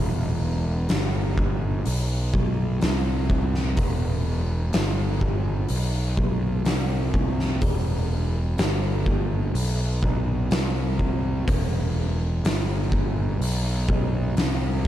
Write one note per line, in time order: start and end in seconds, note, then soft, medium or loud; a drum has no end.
0.00 0.86 E1 medium
0.89 1.82 G1 medium
0.89 snare loud
0.89 open hi-hat medium
1.38 kick medium
1.86 2.32 B1 medium
1.86 open hi-hat medium
2.34 2.79 B1 loud
2.34 kick medium
2.81 3.74 C2 loud
2.81 snare loud
2.81 open hi-hat soft
3.30 kick medium
3.55 snare soft
3.77 4.69 E1 medium
3.77 kick loud
3.77 open hi-hat medium
4.73 5.66 G1 medium
4.73 snare loud
4.73 open hi-hat medium
5.21 kick medium
5.68 6.15 B1 medium
5.68 open hi-hat medium
6.17 6.63 B1 medium
6.17 kick medium
6.65 7.57 C2 medium
6.65 snare loud
6.65 open hi-hat medium
7.14 kick medium
7.40 snare soft
7.61 8.54 E1 medium
7.61 kick loud
7.61 open hi-hat medium
8.58 9.50 G1 medium
8.58 snare loud
8.58 open hi-hat soft
9.06 kick medium
9.54 10.00 B1 medium
9.54 open hi-hat medium
10.03 10.48 B1 loud
10.03 kick medium
10.51 11.43 C2 medium
10.51 snare loud
10.51 open hi-hat soft
10.99 kick medium
11.48 12.40 E1 loud
11.48 kick loud
11.48 open hi-hat medium
12.44 13.36 G1 medium
12.44 snare loud
12.44 open hi-hat medium
12.92 kick medium
13.39 13.86 B1 medium
13.39 open hi-hat medium
13.88 14.34 B1 medium
13.88 kick medium
14.37 14.88 C2 medium
14.37 snare loud
14.37 open hi-hat soft